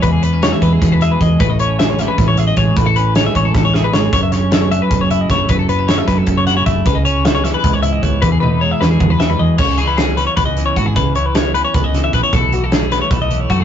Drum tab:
CC |-------|-------|-------|-------|
HH |xxxxxxx|xxxxxxx|xxxx---|xxxxxxx|
SD |--o-o--|--ooo--|--o-ooo|-oo---o|
T1 |-------|-------|-------|-------|
T2 |-------|-------|-------|-------|
BD |o--oo-o|o---o-o|o--oo--|o---o-o|

CC |-------|-------|-------|x------|
HH |xxxxxxx|xxxxxxx|x------|-xxxxxx|
SD |--oo-o-|--oo---|---o-o-|--o----|
T1 |-------|-------|-o-----|-------|
T2 |-------|-------|----o--|-------|
BD |o--oo-o|o---o-o|o---o--|o---o-o|

CC |-------|-------|
HH |xxxxxxx|xxxxxxx|
SD |--o--o-|--oo---|
T1 |-------|-------|
T2 |-------|-------|
BD |o---o-o|o---o-o|